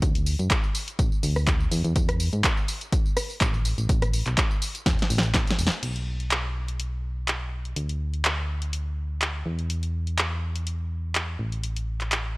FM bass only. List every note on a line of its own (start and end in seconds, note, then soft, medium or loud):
0.02 0.36 D2 loud
0.39 0.49 F#2 medium
0.99 1.10 A1 medium
1.23 1.69 D2 loud
1.72 1.82 E2 loud
1.84 1.94 E2 loud
1.96 2.29 E2 loud
2.33 2.42 G#2 medium
3.41 3.75 A1 medium
3.78 3.87 A1 medium
3.89 4.23 A1 loud
4.26 4.36 B1 medium
4.86 4.97 E1 medium
5.10 5.34 A1 loud
5.34 5.45 A1 medium
5.59 5.69 E1 loud
5.83 7.74 B1 medium
7.76 9.44 D2 medium
9.46 11.37 E2 medium
11.39 12.37 A1 medium